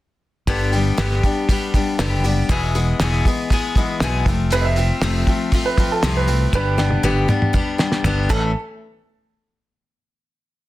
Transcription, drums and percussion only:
0.47 kick, open hi-hat
0.73 open hi-hat
0.98 snare, open hi-hat
1.11 snare
1.23 kick, open hi-hat
1.49 kick, open hi-hat
1.74 kick, open hi-hat
1.99 snare, open hi-hat
2.25 open hi-hat
2.49 kick, open hi-hat
2.75 open hi-hat
3.00 snare, open hi-hat
3.13 snare
3.25 kick, open hi-hat
3.50 kick, open hi-hat
3.75 kick, open hi-hat
4.00 snare, open hi-hat
4.26 kick, open hi-hat
4.51 open hi-hat
4.76 open hi-hat
5.02 snare, open hi-hat
5.27 kick, open hi-hat
5.52 kick, open hi-hat
5.78 kick, open hi-hat
6.03 snare, open hi-hat
6.28 open hi-hat
6.53 kick
6.78 snare
6.91 high tom
7.04 mid tom
7.29 mid tom
7.42 mid tom
7.54 kick, mid tom
7.79 snare
7.92 snare
8.04 floor tom
8.30 kick, crash

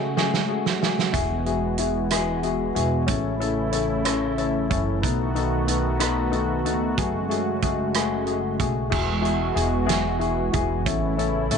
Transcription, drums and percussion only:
0.17 snare
0.34 snare
0.66 snare
0.83 snare
0.99 snare
1.14 kick, closed hi-hat
1.46 closed hi-hat
1.78 closed hi-hat
2.11 cross-stick, closed hi-hat
2.43 closed hi-hat
2.76 closed hi-hat
3.08 kick, closed hi-hat
3.41 closed hi-hat
3.73 closed hi-hat
4.05 cross-stick, closed hi-hat
4.38 closed hi-hat
4.71 kick, closed hi-hat
5.03 kick, closed hi-hat
5.36 closed hi-hat
5.68 closed hi-hat
6.00 cross-stick, closed hi-hat
6.33 closed hi-hat
6.66 closed hi-hat
6.98 kick, closed hi-hat
7.31 closed hi-hat
7.62 kick, closed hi-hat
7.94 cross-stick, closed hi-hat
8.27 closed hi-hat
8.60 kick, closed hi-hat
8.92 kick, crash
9.25 closed hi-hat
9.57 closed hi-hat
9.89 snare, closed hi-hat
10.21 closed hi-hat
10.53 kick, closed hi-hat
10.86 kick, closed hi-hat
11.19 closed hi-hat
11.51 closed hi-hat

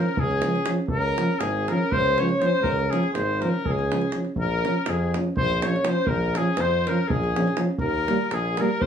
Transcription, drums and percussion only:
0.17 davul low
0.31 davul high
0.42 davul high
0.56 davul high
0.66 davul high
0.88 davul low
1.18 davul high
1.41 davul high
1.68 davul high
1.92 davul low
2.06 davul high
2.18 davul high
2.29 davul high
2.42 davul high
2.64 davul low
2.79 davul high
2.93 davul high
3.03 davul high
3.15 davul high
3.42 davul high
3.54 davul high
3.66 davul low
3.79 davul high
3.92 davul high
4.01 davul high
4.12 davul high
4.25 davul high
4.36 davul low
4.65 davul high
4.86 davul high
5.14 davul high
5.37 davul low
5.51 davul high
5.62 davul high
5.76 davul high
5.85 davul high
6.07 davul low
6.35 davul high
6.57 davul high
6.87 davul high
7.10 davul low
7.23 davul high
7.36 davul high
7.47 davul high
7.57 davul high
7.78 davul low
8.08 davul high
8.31 davul high
8.57 davul high
8.81 davul low

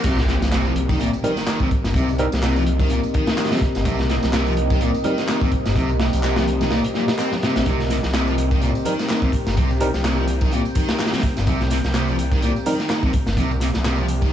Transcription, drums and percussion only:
0.04 kick, closed hi-hat, crash, tambourine, high conga
0.18 snare, tambourine
0.28 snare, closed hi-hat
0.42 snare, tambourine, high conga
0.52 snare, clap, closed hi-hat, tambourine
0.66 tambourine
0.76 closed hi-hat
0.89 kick, tambourine, high conga
1.00 closed hi-hat, tambourine
1.13 tambourine
1.23 closed hi-hat, high conga
1.37 snare, tambourine
1.47 snare, clap, closed hi-hat, tambourine
1.60 kick, tambourine, high conga
1.71 kick, closed hi-hat
1.84 snare, tambourine
1.94 kick, closed hi-hat, tambourine, high conga
2.08 tambourine
2.18 closed hi-hat
2.32 snare, tambourine, high conga
2.43 snare, clap, closed hi-hat, tambourine
2.56 tambourine
2.66 closed hi-hat
2.79 kick, tambourine, high conga
2.90 closed hi-hat, tambourine
3.03 tambourine
3.14 kick, closed hi-hat, high conga
3.27 snare, tambourine
3.37 snare, clap, closed hi-hat, tambourine
3.45 snare, closed hi-hat
3.51 snare, closed hi-hat, tambourine, high conga
3.57 snare, closed hi-hat
3.61 kick, closed hi-hat
3.75 snare, tambourine
3.85 kick, closed hi-hat, tambourine, high conga
3.99 snare, tambourine
4.09 snare, closed hi-hat
4.23 snare, tambourine, high conga
4.33 snare, clap, closed hi-hat, tambourine
4.46 tambourine
4.57 closed hi-hat
4.70 kick, tambourine, high conga
4.81 closed hi-hat, tambourine
4.94 tambourine
5.04 closed hi-hat, high conga
5.18 snare, tambourine
5.28 snare, clap, closed hi-hat, tambourine
5.41 kick, tambourine, high conga
5.52 kick, closed hi-hat
5.66 snare, tambourine
5.76 kick, closed hi-hat, tambourine, high conga
5.89 tambourine
6.00 snare
6.13 closed hi-hat, tambourine, high conga
6.23 snare, clap, tambourine
6.36 snare, tambourine
6.48 closed hi-hat
6.61 snare, tambourine, high conga
6.71 snare, tambourine
6.84 closed hi-hat, tambourine
6.94 snare, high conga
7.08 snare, tambourine
7.19 clap, closed hi-hat, tambourine
7.32 snare, tambourine, high conga
7.43 snare, closed hi-hat
7.56 snare, closed hi-hat, tambourine
7.66 kick, closed hi-hat, tambourine, high conga
7.80 snare, tambourine
7.90 snare, closed hi-hat, open hi-hat
8.03 snare, tambourine, high conga
8.14 snare, clap, closed hi-hat, tambourine
8.28 tambourine
8.38 closed hi-hat, open hi-hat
8.51 kick, tambourine, high conga
8.62 closed hi-hat, tambourine
8.75 tambourine
8.85 closed hi-hat, open hi-hat, high conga
8.99 snare, tambourine
9.09 snare, clap, closed hi-hat, tambourine
9.22 kick, tambourine, high conga
9.32 kick, closed hi-hat, open hi-hat
9.47 snare, tambourine
9.57 kick, closed hi-hat, tambourine, high conga
9.70 tambourine
9.80 closed hi-hat, open hi-hat
9.94 snare, tambourine, high conga
10.04 snare, clap, closed hi-hat
10.18 tambourine
10.28 closed hi-hat, open hi-hat
10.41 kick, tambourine, high conga
10.52 closed hi-hat, tambourine
10.65 tambourine
10.75 kick, closed hi-hat, open hi-hat, high conga
10.89 snare, tambourine
10.99 snare, clap, closed hi-hat, tambourine
11.06 snare, closed hi-hat
11.13 snare, closed hi-hat, tambourine, high conga
11.18 snare, closed hi-hat
11.23 kick, closed hi-hat, open hi-hat
11.37 snare, tambourine
11.47 kick, closed hi-hat, tambourine, high conga
11.61 snare, tambourine
11.70 snare, closed hi-hat, open hi-hat
11.84 snare, tambourine, high conga
11.94 snare, clap, closed hi-hat, tambourine
12.09 tambourine
12.19 closed hi-hat, open hi-hat
12.31 kick, tambourine, high conga
12.42 closed hi-hat, tambourine
12.56 tambourine
12.66 closed hi-hat, open hi-hat, high conga
12.80 snare, tambourine
12.89 snare, clap, closed hi-hat, tambourine
13.03 kick, tambourine, high conga
13.13 kick, closed hi-hat, open hi-hat
13.27 snare, tambourine
13.37 kick, closed hi-hat, tambourine, high conga
13.51 tambourine
13.60 snare, closed hi-hat, open hi-hat
13.74 snare, tambourine, high conga
13.84 snare, clap, closed hi-hat, tambourine
13.98 tambourine
14.08 closed hi-hat, open hi-hat
14.22 kick, tambourine, high conga

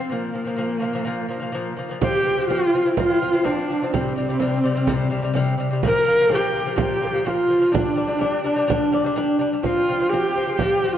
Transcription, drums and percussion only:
2.02 frame drum
2.38 frame drum
2.51 frame drum
2.74 frame drum
2.97 frame drum
3.34 frame drum
3.45 frame drum
3.94 frame drum
4.29 frame drum
4.40 frame drum
4.64 frame drum
4.87 frame drum
5.24 frame drum
5.35 frame drum
5.83 frame drum
6.19 frame drum
6.30 frame drum
6.54 frame drum
6.78 frame drum
7.14 frame drum
7.27 frame drum
7.75 frame drum
8.21 frame drum
8.46 frame drum
8.70 frame drum
8.94 frame drum
9.04 frame drum
9.17 frame drum
9.64 frame drum
10.00 frame drum
10.13 frame drum
10.36 frame drum
10.59 frame drum
10.94 frame drum

